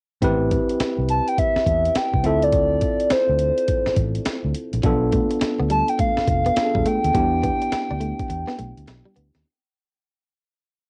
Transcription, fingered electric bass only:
0.23 0.56 A1 loud
0.80 muted fingered electric bass stroke soft
0.98 1.19 C2 medium
1.56 muted fingered electric bass stroke soft
1.66 1.87 E2 loud
1.96 muted fingered electric bass stroke soft
2.14 2.21 C2 medium
2.24 2.79 D2 loud
3.11 muted fingered electric bass stroke soft
3.29 3.50 D2 medium
3.87 muted fingered electric bass stroke soft
3.96 4.17 A1 medium
4.26 muted fingered electric bass stroke soft
4.44 4.52 D2 medium
4.73 4.81 A#1 medium
4.84 5.18 B1 loud
5.42 muted fingered electric bass stroke soft
5.60 5.81 D2 medium
6.18 muted fingered electric bass stroke soft
6.28 6.48 F1 medium
6.57 muted fingered electric bass stroke soft
6.75 6.83 E1 medium
7.05 7.12 D#2 medium
7.15 7.48 E2 loud
7.73 muted fingered electric bass stroke soft
7.91 8.11 D2 medium
8.30 8.43 E2 medium
8.60 8.72 B1 medium
8.78 8.85 D2 medium
9.17 9.30 D2 loud
9.35 9.43 D#2 medium

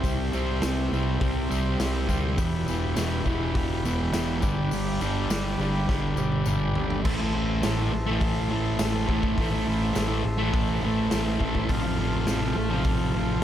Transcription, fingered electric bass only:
0.04 0.29 C2 medium
0.33 0.59 C2 medium
0.63 0.88 C2 loud
0.92 1.17 C2 medium
1.21 1.46 C2 loud
1.51 1.76 C2 loud
1.80 2.05 C2 medium
2.09 2.34 D2 medium
2.38 2.64 E1 medium
2.68 2.93 E1 loud
2.97 3.22 E1 loud
3.26 3.51 E1 medium
3.55 3.81 E1 loud
3.85 4.10 E1 loud
4.14 4.39 E1 medium
4.43 4.68 G1 loud
4.72 4.97 G1 loud
5.01 5.26 G1 loud
5.30 5.55 G1 medium
5.59 5.84 G1 medium
5.89 6.14 G1 medium
6.16 6.42 G1 loud
6.46 6.72 G1 medium
6.76 7.05 G1 medium
7.05 7.33 A1 medium
7.35 7.62 A1 loud
7.64 7.91 A1 loud
7.93 8.20 A1 loud
8.21 8.49 A1 loud
8.51 8.78 A1 loud
8.79 9.07 A1 medium
9.09 9.36 A1 medium
9.38 9.66 A1 medium
9.67 9.94 A1 medium
9.95 10.23 A1 medium
10.25 10.53 A1 medium
10.53 10.81 A1 loud
10.83 11.10 A1 loud
11.12 11.39 A1 medium
11.40 11.68 A1 medium
11.69 11.97 A1 medium
11.98 12.26 A1 medium
12.28 12.55 A1 loud
12.56 12.84 A1 medium
12.85 13.12 A1 medium
13.14 13.41 A1 medium

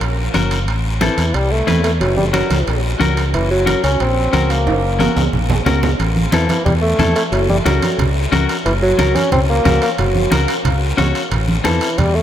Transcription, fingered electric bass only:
0.01 0.28 A#1 medium
0.34 0.68 F#1 medium
0.68 1.08 A1 medium
1.18 1.31 E2 medium
1.34 1.61 C2 medium
1.68 2.02 E2 medium
2.01 2.41 F#1 medium
2.50 2.64 C#2 medium
2.67 2.94 A#1 medium
3.00 3.35 C#2 medium
3.33 3.73 F#1 medium
3.84 3.97 C#2 medium
4.00 4.27 A#1 medium
4.33 4.68 C#2 medium
4.67 5.07 F#1 medium
5.16 5.30 C#2 medium
5.33 5.60 A#1 medium
5.66 5.93 C#2 medium
5.99 6.26 A1 loud
6.33 6.46 E2 medium
6.66 6.93 E2 medium
6.99 7.13 E2 loud
7.32 7.59 F#1 loud
7.65 7.79 C#2 medium
7.98 8.25 C#2 medium
8.32 8.46 C#2 medium
8.65 8.92 F#1 loud
8.99 9.12 C#2 medium
9.32 9.59 C#2 medium
9.65 9.79 C#2 loud
9.99 10.25 F#1 loud
10.32 10.45 C#2 medium
10.65 10.92 C#2 medium
10.98 11.12 C#2 medium
11.32 11.58 A1 loud
11.65 11.78 E2 medium
11.98 12.22 E2 medium

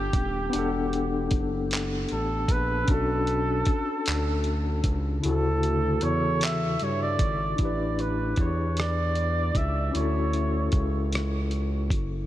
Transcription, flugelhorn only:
0.00 1.33 G4 loud
2.12 2.53 A4 medium
2.52 2.93 B4 loud
2.91 4.86 A4 medium
5.25 6.04 A4 medium
6.03 6.46 C#5 medium
6.44 6.85 E5 loud
6.84 7.02 C#5 medium
7.03 7.56 D5 medium
7.63 8.02 D5 medium
8.01 8.39 B4 medium
8.41 8.81 C#5 medium
8.79 9.59 D5 loud
9.57 9.95 E5 medium
9.96 10.80 C#5 medium

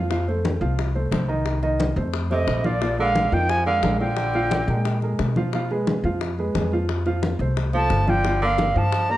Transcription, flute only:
2.33 2.68 D#5 medium
2.66 2.99 D5 medium
3.00 3.35 F5 medium
3.33 3.51 G5 loud
3.49 3.65 G#5 loud
3.66 3.98 F5 loud
4.00 4.98 G5 medium
7.76 8.11 A5 loud
8.09 8.43 G5 loud
8.44 8.79 F5 medium
8.78 9.13 A5 loud
9.11 9.17 A#5 loud

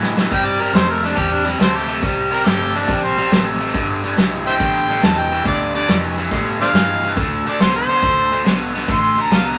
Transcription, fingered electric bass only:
0.00 0.30 A2 medium
0.31 0.73 G2 medium
0.73 1.15 F2 medium
1.17 1.59 E2 medium
1.59 2.01 D2 medium
2.02 2.44 C2 medium
2.46 2.88 G1 medium
2.88 3.30 A#1 medium
3.31 3.73 A1 medium
4.17 4.59 B1 medium
4.60 5.02 A1 medium
5.03 5.44 E2 medium
5.45 5.87 D2 medium
5.88 6.30 F2 medium
6.31 6.72 A2 medium
6.73 7.15 G2 medium
7.17 7.44 D2 medium
7.46 muted fingered electric bass stroke soft
7.60 7.87 C2 medium
7.89 muted fingered electric bass stroke soft
8.02 8.44 D2 medium
8.45 8.87 B1 medium
8.88 9.30 A1 medium
9.31 9.58 C2 medium

